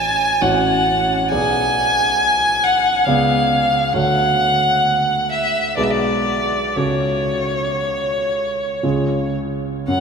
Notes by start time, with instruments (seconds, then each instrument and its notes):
Already playing: grand piano A1 C#4 F#4 C#5, violin G#5
0.41 grand piano A1 C#4 F#4 C#5, violin F#5
1.30 grand piano B1 B3 G#4 D5, violin G#5
2.64 violin F#5
3.04 grand piano C#2 B3 G#4 D5, violin F5
3.93 grand piano D2 A3 F#4 C#5, violin F#5
5.31 violin E5
5.76 grand piano B1 G#3 G#4 B4, violin D5
5.83 violin E5
5.90 violin D5
6.76 grand piano C#2 C#4 F#4 A4, violin C#5
8.83 grand piano C#2 C#4 F4 G#4
9.88 grand piano F#2, violin F#5